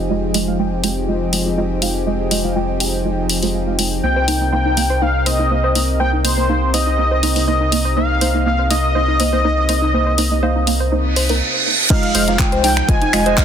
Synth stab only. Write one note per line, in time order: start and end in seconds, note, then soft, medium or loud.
0.10 0.32 G#3 medium
0.10 0.32 F4 medium
0.10 0.32 D#5 loud
0.34 0.44 G#3 medium
0.34 0.44 F4 medium
0.34 0.44 D#5 medium
0.47 0.56 G#3 medium
0.47 0.56 F4 medium
0.47 0.56 F5 medium
0.59 0.81 G#3 medium
0.59 0.81 F4 medium
0.59 0.81 G5 loud
0.84 0.90 G#3 medium
0.84 0.90 F4 medium
0.84 0.90 G5 loud
1.08 1.15 G#3 medium
1.08 1.15 F4 medium
1.08 1.15 D#5 medium
1.33 1.43 G#3 medium
1.33 1.43 F4 medium
1.33 1.43 D#5 medium
1.46 1.55 G#3 medium
1.46 1.55 F4 medium
1.46 1.55 D#5 medium
1.57 1.64 G#3 medium
1.57 1.64 F4 medium
1.57 1.64 D#5 loud
1.82 1.88 G#3 medium
1.82 1.88 F4 medium
1.82 1.88 F5 loud
2.07 2.28 G#3 medium
2.07 2.28 F4 medium
2.07 2.28 D#5 loud
2.31 2.41 G#3 medium
2.31 2.41 F4 medium
2.31 2.41 D#5 medium
2.44 2.53 G#3 medium
2.44 2.53 F4 medium
2.44 2.53 F5 medium
2.56 2.78 G#3 medium
2.56 2.78 F4 medium
2.56 2.78 G5 loud
2.80 2.87 G#3 medium
2.80 2.87 F4 medium
2.80 2.87 G5 loud
3.05 3.11 G#3 medium
3.05 3.11 F4 medium
3.05 3.11 D#5 medium
3.43 3.51 G#3 loud
3.43 3.51 F4 medium
3.43 3.51 C5 loud
3.54 3.64 G#3 medium
3.54 3.64 F4 medium
3.54 3.64 F5 medium
3.67 3.73 G#3 medium
3.67 3.73 F4 medium
3.67 3.73 F5 medium
3.79 3.89 G#3 loud
3.79 3.89 F4 medium
3.79 3.89 G5 loud
4.03 4.25 A#3 medium
4.03 4.25 D#4 medium
4.03 4.25 C5 loud
4.28 4.38 A#3 medium
4.28 4.38 D#4 medium
4.28 4.38 C5 medium
4.41 4.50 A#3 medium
4.41 4.50 D#4 medium
4.41 4.50 D#5 medium
4.52 4.74 A#3 medium
4.52 4.74 D#4 medium
4.52 4.74 F5 loud
4.77 4.83 A#3 medium
4.77 4.83 D#4 medium
4.77 4.83 F5 loud
5.02 5.08 A#3 medium
5.02 5.08 D#4 medium
5.02 5.08 C5 medium
5.26 5.36 A#3 medium
5.26 5.36 D#4 medium
5.26 5.36 C5 medium
5.39 5.48 A#3 medium
5.39 5.48 D#4 medium
5.39 5.48 C5 medium
5.51 5.57 A#3 medium
5.51 5.57 D#4 medium
5.51 5.57 C5 loud
5.75 5.82 A#3 medium
5.75 5.82 D#4 medium
5.75 5.82 D#5 medium
6.00 6.22 A#3 medium
6.00 6.22 D#4 medium
6.00 6.22 C5 loud
6.25 6.35 A#3 medium
6.25 6.34 D#4 medium
6.25 6.35 C5 medium
6.38 6.46 A#3 medium
6.38 6.46 D#4 medium
6.38 6.46 D#5 medium
6.49 6.71 A#3 medium
6.49 6.71 D#4 medium
6.49 6.71 F5 loud
6.74 6.80 A#3 medium
6.74 6.80 D#4 medium
6.74 6.80 F5 loud
6.98 7.05 A#3 medium
6.98 7.05 D#4 medium
6.98 7.05 C5 medium
7.23 7.33 A#3 medium
7.23 7.33 D#4 medium
7.23 7.33 C5 medium
7.36 7.45 A#3 medium
7.36 7.45 D#4 medium
7.36 7.45 C5 medium
7.48 7.54 A#3 medium
7.48 7.54 D#4 medium
7.48 7.54 C5 loud
7.72 7.78 A#3 medium
7.72 7.78 D#4 medium
7.72 7.78 D#5 medium
7.97 8.19 A#3 medium
7.97 8.19 D#4 medium
7.97 8.19 C5 loud
8.21 8.31 A#3 medium
8.21 8.31 D#4 medium
8.21 8.31 C5 medium
8.34 8.43 A#3 medium
8.34 8.43 D#4 medium
8.34 8.43 D#5 medium
8.46 8.68 A#3 medium
8.46 8.68 D#4 medium
8.46 8.68 F5 loud
8.71 8.77 A#3 medium
8.71 8.77 D#4 medium
8.71 8.77 F5 loud
8.95 9.01 A#3 medium
8.95 9.01 D#4 medium
8.95 9.01 C5 medium
9.20 9.30 A#3 medium
9.20 9.30 D#4 medium
9.20 9.30 C5 medium
9.33 9.42 A#3 medium
9.33 9.42 D#4 medium
9.33 9.42 C5 medium
9.44 9.51 A#3 medium
9.44 9.51 D#4 medium
9.44 9.51 C5 loud
9.69 9.75 A#3 medium
9.69 9.75 D#4 medium
9.69 9.75 D#5 medium
9.94 10.15 A#3 medium
9.94 10.15 D#4 medium
9.94 10.15 C5 loud
10.18 10.28 A#3 medium
10.18 10.28 D#4 medium
10.18 10.28 C5 loud
10.31 10.40 A#3 medium
10.31 10.40 D#4 medium
10.31 10.40 D#5 medium
10.43 10.64 A#3 medium
10.43 10.64 D#4 medium
10.43 10.64 F5 loud
10.67 10.74 A#3 medium
10.67 10.74 D#4 medium
10.67 10.74 F5 loud
10.92 10.98 A#3 medium
10.92 10.98 D#4 medium
10.92 10.98 C5 medium
11.29 11.38 A#3 medium
11.29 11.38 D#4 medium
11.29 11.38 A#4 loud
11.90 12.12 G#3 loud
11.90 12.12 F4 medium
11.90 12.12 D#5 loud
12.15 12.25 G#3 medium
12.15 12.25 F4 medium
12.15 12.25 D#5 loud
12.28 12.37 G#3 medium
12.28 12.37 F4 medium
12.28 12.37 F5 medium
12.39 12.61 F4 medium
12.39 12.61 G5 loud
12.64 12.70 G#3 medium
12.64 12.70 F4 medium
12.64 12.70 G5 loud
12.89 12.95 G#3 medium
12.89 12.95 F4 medium
12.89 12.95 D#5 medium
13.13 13.23 G#3 medium
13.13 13.23 F4 medium
13.13 13.23 D#5 medium
13.26 13.35 G#3 medium
13.26 13.35 F4 medium
13.26 13.35 D#5 medium